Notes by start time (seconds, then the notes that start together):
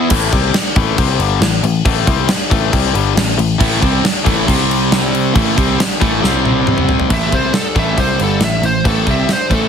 Already playing: E4
0.10 A1 A2 E3 A3, kick, crash
0.32 C2 C3 G3 C4, kick, crash
0.54 muted overdriven electric guitar stroke, muted picked electric bass stroke, snare, crash
0.76 A1 A2 E3 A3, kick, crash
0.98 C2 C3 G3 C4, kick, crash
1.19 G1 G2 D3 G3, crash
1.41 A1 A2 E3, snare, crash
1.63 A1 A2 E3, crash
1.85 A1 A2 E3 A3, kick, crash
2.07 C2 C3 G3 C4, kick, crash
2.29 muted overdriven electric guitar stroke, snare, crash
2.50 A1 A2 E3 A3, kick, crash
2.72 C2 C3 G3 C4, kick, crash
2.93 G1 G2 D3 G3, crash
3.15 A1 A2 E3, snare, crash
3.37 A1 A2 E3, crash
3.58 A1 A2 E3 A3, kick, crash
3.81 C2 C3 G3 C4, kick, crash
4.03 muted overdriven electric guitar stroke, muted distorted electric guitar stroke, muted picked electric bass stroke, snare, crash
4.24 A1 A2 E3 A3, kick, crash
4.47 C2 C3 G3 C4, kick, crash
4.71 crash
4.92 snare, crash
5.15 crash
5.34 A1 A2 E3 A3, kick, crash
5.56 C2 C3 G3 C4, kick, crash
5.78 muted overdriven electric guitar stroke, muted distorted electric guitar stroke, snare, crash
6.00 A1 A2 E3 A3, kick, crash
6.22 C2 C3 G3 C4, snare
6.45 high tom
6.67 mid tom
6.78 mid tom
6.89 floor tom
7.00 floor tom
7.09 A1 A2 E3 A3, kick, crash
7.14 E5
7.31 C2 C3 G3 C4 C5, kick, crash
7.54 A4, muted overdriven electric guitar stroke, muted picked electric bass stroke, muted distorted electric guitar stroke, snare, crash
7.75 A1 A2 E3 A3 E5, kick, crash
7.97 C2 C3 G3 C4 C5, kick, crash
8.19 G1 G2 D3 G3, crash
8.23 A4
8.40 A1 A2 E3 E5, snare, crash
8.62 A1 A2 E3 C5, crash
8.84 A1 A2 E3 A3 A4, kick, crash
9.07 C2 C3 G3 C4, kick, crash
9.11 E5
9.28 muted picked electric bass stroke, muted distorted electric guitar stroke, muted overdriven electric guitar stroke, snare, crash
9.33 C5
9.50 A1 A2 E3 A3, kick, crash
9.54 A4